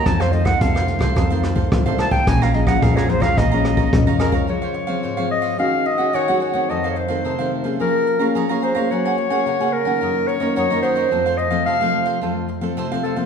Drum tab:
HH |xxx-x-x-xxx-xxxx|xxxxxxx-x-x-xxx-|----------------|----------------|
SD |rr-r-r-rr-r-r-r-|rr-r-r-rr-r-r-r-|----------------|----------------|
BD |o--oo--oo--oo--o|o--oo--oo--oo--o|----------------|----------------|

HH |----------------|----------------|
SD |----------------|----------------|
BD |----------------|----------------|